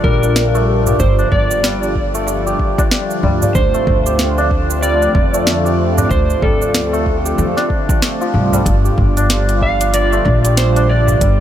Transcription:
0.00 11.40 D3 medium
0.00 8.62 F3 medium
0.00 3.51 G3 medium
0.00 1.62 G3 medium
0.00 0.54 A3 loud
0.00 0.22 D4 medium
0.00 8.62 F4 medium
0.00 0.86 G4 medium
0.00 0.96 A#4 medium
0.04 0.92 A#1 medium
0.04 kick loud
0.04 darbuka tek medium
0.23 1.18 D4 medium
0.23 shaker medium
0.36 snare loud
0.36 shaker medium
0.55 2.14 A3 loud
0.55 darbuka ka medium
0.55 shaker soft
0.87 2.46 G4 medium
0.87 darbuka dum medium
0.87 shaker medium
1.00 1.22 G1 medium
1.00 1.29 C5 medium
1.00 kick loud
1.00 shaker medium
1.19 1.82 D4 medium
1.19 shaker soft
1.32 2.52 G1 medium
1.32 2.55 D5 medium
1.32 kick medium
1.32 darbuka dum medium
1.51 darbuka tek soft
1.51 shaker medium
1.63 3.22 G3 medium
1.63 snare loud
1.63 shaker medium
1.83 2.78 D4 medium
1.83 darbuka ka medium
1.83 shaker soft
1.96 kick medium
2.14 3.74 A3 loud
2.14 darbuka ka soft
2.14 darbuka tek soft
2.14 shaker medium
2.27 darbuka ka medium
2.27 shaker medium
2.46 4.06 G4 medium
2.46 shaker soft
2.59 kick medium
2.78 3.42 D4 loud
2.78 kick loud
2.78 darbuka tek medium
2.78 shaker medium
2.91 snare loud
2.91 shaker medium
3.11 shaker soft
3.23 3.46 D2 medium
3.23 3.60 G3 medium
3.23 darbuka ka medium
3.23 darbuka dum medium
3.42 4.38 D4 medium
3.42 darbuka dum loud
3.42 shaker medium
3.54 3.78 D2 medium
3.54 8.61 A3 medium
3.54 8.61 C4 medium
3.54 4.87 C5 medium
3.54 kick loud
3.54 shaker medium
3.74 5.34 A3 medium
3.74 shaker soft
3.87 5.07 D2 medium
3.87 kick medium
3.87 darbuka dum medium
4.06 5.65 G4 medium
4.06 shaker medium
4.19 snare medium
4.19 shaker medium
4.38 5.02 D4 loud
4.38 darbuka ka soft
4.38 shaker soft
4.51 kick medium
4.70 darbuka ka soft
4.70 shaker medium
4.82 6.41 G3 medium
4.82 6.14 D5 loud
4.82 shaker medium
5.02 5.97 D4 medium
5.02 darbuka ka soft
5.02 shaker soft
5.15 6.03 F2 medium
5.15 kick loud
5.15 darbuka tek medium
5.34 6.93 A3 medium
5.34 shaker medium
5.47 snare loud
5.47 shaker medium
5.65 7.25 G4 medium
5.65 darbuka ka soft
5.65 shaker soft
5.98 6.61 D4 medium
5.98 darbuka dum loud
5.98 shaker medium
6.11 6.33 D2 loud
6.11 6.44 C5 medium
6.11 kick loud
6.11 shaker medium
6.30 shaker soft
6.42 7.38 D2 medium
6.42 8.52 G3 medium
6.42 7.66 A4 medium
6.42 kick medium
6.42 darbuka dum medium
6.61 7.56 D4 medium
6.61 darbuka tek soft
6.61 shaker medium
6.75 snare loud
6.75 shaker medium
6.93 8.01 A3 medium
6.93 darbuka ka soft
6.93 shaker soft
7.06 kick medium
7.25 8.84 G4 medium
7.25 darbuka ka soft
7.25 darbuka tek soft
7.25 shaker medium
7.38 7.50 F2 loud
7.38 darbuka ka medium
7.38 shaker medium
7.57 9.16 D4 loud
7.57 snare soft
7.57 shaker soft
7.70 kick medium
7.89 kick loud
7.89 darbuka tek medium
7.89 shaker medium
8.02 10.12 A3 medium
8.02 snare loud
8.02 shaker medium
8.21 8.71 F3 loud
8.21 shaker soft
8.34 8.56 C2 medium
8.34 darbuka ka medium
8.34 darbuka dum medium
8.53 8.71 G3 medium
8.53 darbuka dum loud
8.53 shaker medium
8.66 8.88 G1 loud
8.66 11.40 F3 medium
8.66 11.40 G3 medium
8.66 11.19 F4 medium
8.66 kick loud
8.66 closed hi-hat medium
8.66 shaker medium
8.85 10.44 G4 medium
8.85 shaker soft
8.98 10.18 G1 medium
8.98 kick medium
8.98 darbuka dum medium
9.17 9.80 D4 loud
9.17 closed hi-hat soft
9.17 shaker medium
9.30 snare medium
9.30 closed hi-hat medium
9.30 shaker medium
9.49 closed hi-hat soft
9.49 darbuka ka soft
9.49 shaker soft
9.62 11.20 G3 medium
9.62 9.95 F5 medium
9.62 kick medium
9.81 10.76 D4 medium
9.81 closed hi-hat soft
9.81 darbuka ka soft
9.81 shaker medium
9.94 10.58 D5 medium
9.94 closed hi-hat medium
9.94 shaker medium
10.12 11.40 A3 medium
10.12 darbuka ka soft
10.12 shaker soft
10.25 11.14 A#1 loud
10.25 kick loud
10.25 darbuka tek medium
10.44 11.40 G4 medium
10.44 closed hi-hat soft
10.44 shaker medium
10.57 10.91 C5 medium
10.57 snare medium
10.57 closed hi-hat medium
10.57 shaker medium
10.76 11.40 D4 medium
10.76 closed hi-hat soft
10.76 darbuka ka soft
10.76 shaker soft
10.89 11.40 D5 medium
11.08 darbuka dum medium
11.08 shaker medium
11.21 11.40 G1 loud
11.21 11.40 G3 medium
11.21 11.40 G4 medium
11.21 kick loud
11.21 closed hi-hat medium
11.21 shaker medium

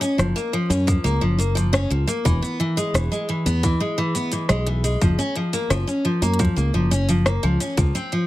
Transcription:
0.01 0.17 C#4 loud
0.01 closed hi-hat soft
0.01 shaker medium
0.18 0.32 F#1 medium
0.18 0.34 F3 medium
0.18 cross-stick medium
0.18 closed hi-hat soft
0.18 shaker soft
0.36 0.52 A#3 loud
0.36 shaker soft
0.53 0.69 F3 medium
0.53 closed hi-hat soft
0.70 0.97 F#2 loud
0.70 0.86 C#4 medium
0.70 closed hi-hat soft
0.70 shaker medium
0.87 1.04 F3 medium
0.87 kick loud
0.87 closed hi-hat medium
0.87 shaker medium
1.04 1.18 C#2 medium
1.04 1.21 A#3 medium
1.04 shaker soft
1.21 1.85 F#1 medium
1.21 1.37 F3 medium
1.39 1.54 A#3 medium
1.39 closed hi-hat soft
1.39 shaker medium
1.55 1.72 F3 medium
1.55 closed hi-hat medium
1.55 shaker medium
1.73 1.89 C#4 loud
1.73 cross-stick medium
1.73 shaker soft
1.90 2.04 C#2 medium
1.90 2.06 F3 medium
1.90 closed hi-hat soft
2.07 2.24 A#3 loud
2.07 closed hi-hat medium
2.07 shaker medium
2.25 2.39 E1 medium
2.25 2.41 E3 loud
2.25 kick loud
2.25 closed hi-hat soft
2.25 shaker medium
2.42 2.58 B3 medium
2.42 shaker soft
2.60 2.76 E3 medium
2.60 closed hi-hat soft
2.77 2.94 G#3 loud
2.77 closed hi-hat soft
2.77 shaker medium
2.94 3.08 E1 medium
2.94 3.10 E3 medium
2.94 cross-stick medium
2.94 closed hi-hat medium
2.94 shaker medium
3.12 3.27 G#3 medium
3.12 shaker soft
3.29 3.45 E3 medium
3.29 closed hi-hat soft
3.46 3.73 E2 medium
3.46 3.62 B3 loud
3.46 closed hi-hat soft
3.46 shaker medium
3.63 3.79 E3 medium
3.63 kick loud
3.63 closed hi-hat medium
3.63 shaker medium
3.80 3.97 G#3 medium
3.98 4.13 E3 loud
4.15 4.31 B3 medium
4.15 closed hi-hat soft
4.15 shaker medium
4.32 4.49 E3 medium
4.32 closed hi-hat medium
4.32 shaker medium
4.49 4.95 B1 medium
4.49 4.66 G#3 loud
4.49 cross-stick medium
4.49 shaker soft
4.67 4.82 E3 medium
4.67 closed hi-hat soft
4.84 5.00 G#3 medium
4.84 closed hi-hat medium
4.84 shaker medium
5.01 5.15 F#1 medium
5.01 5.18 F3 medium
5.01 kick loud
5.01 closed hi-hat soft
5.01 shaker medium
5.19 5.34 C#4 loud
5.19 shaker soft
5.35 5.52 F3 medium
5.35 closed hi-hat soft
5.53 5.70 A#3 loud
5.53 closed hi-hat soft
5.53 shaker medium
5.70 5.84 F#1 loud
5.70 5.86 F3 loud
5.70 cross-stick medium
5.70 closed hi-hat medium
5.70 shaker medium
5.87 6.03 C#4 medium
5.87 shaker soft
6.05 6.21 F3 medium
6.05 closed hi-hat soft
6.22 6.49 F#2 medium
6.22 6.39 A#3 loud
6.22 closed hi-hat soft
6.22 shaker medium
6.34 closed hi-hat soft
6.39 6.55 F3 medium
6.39 kick loud
6.39 closed hi-hat medium
6.39 shaker medium
6.45 closed hi-hat soft
6.56 6.70 C#2 loud
6.56 6.72 A#3 medium
6.56 shaker soft
6.74 7.37 F#1 medium
6.74 6.90 F3 medium
6.91 7.07 C#4 loud
6.91 closed hi-hat soft
6.91 shaker medium
7.09 7.24 F3 medium
7.09 closed hi-hat medium
7.09 shaker medium
7.26 7.42 A#3 loud
7.26 cross-stick medium
7.26 shaker soft
7.43 7.56 C#2 medium
7.43 7.58 F3 medium
7.43 closed hi-hat soft
7.60 7.76 C#4 medium
7.60 closed hi-hat medium
7.60 shaker medium
7.77 7.91 C#2 medium
7.77 7.94 F3 medium
7.77 kick loud
7.77 closed hi-hat soft
7.77 shaker medium
7.95 8.11 C4 loud
7.95 shaker soft
8.12 8.27 F3 medium
8.12 closed hi-hat soft

